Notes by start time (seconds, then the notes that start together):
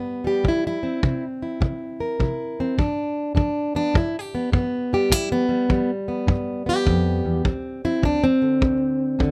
Already playing: G2 G3 B3 G4
0.24 G3 G4
0.44 C3, kick
0.48 E4
0.67 E4
0.83 C4
1.03 C3 C4, kick
1.42 E4
1.61 C3, kick
2.00 A#4
2.20 C3 E4, kick
2.60 C4
2.78 G2 D4, kick
3.35 G2 D4, kick
3.75 B3 D4
3.94 G2 E4, kick
4.19 G4
4.35 B3
4.52 G2 B3, kick
4.93 G3 G4
5.10 G2 E4, kick
5.32 B3
5.49 G3
5.69 G2 G3, kick
6.08 B3
6.27 G2, kick
6.66 B3 G4
6.85 F2, kick
7.25 E2
7.45 D2 C4, kick
7.85 C4 E4
8.03 D2 D4, kick
8.24 C4
8.42 D3
8.61 D2, kick
9.19 D2 D3, kick